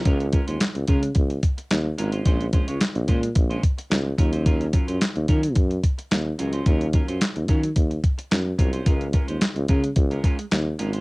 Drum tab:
HH |xxxxxxxxxxxxx-xx|xxxxxxxxxxxxx-xx|xxxxxxxxxxxxx-xx|xxxxxxxxxxxxx-xx|
CP |----x-------x---|----x-------x---|----x-------x---|----x-------x---|
SD |----o-------o---|----o-------o---|----o-------o---|----o-------o---|
BD |o-o---o-o-o-----|o-o---o-o-o---o-|o-o---o-o-o-----|o-o---o-o-o---o-|

HH |xxxxxxxxxxxxx-xx|
CP |----x-------x---|
SD |----o-------o---|
BD |o-o---o-o-o-----|